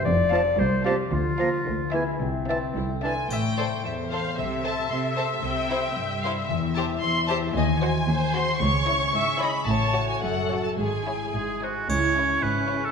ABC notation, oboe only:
X:1
M:2/4
L:1/16
Q:1/4=112
K:Am
V:1 name="Oboe"
z2 a2 z2 a2 | z2 _b2 z2 ^g2 | z2 a2 z2 a2 | z8 |
z8 | z8 | z8 | [K:C#m] z8 |
z8 | z8 | z4 G2 F2 | c4 B3 A |]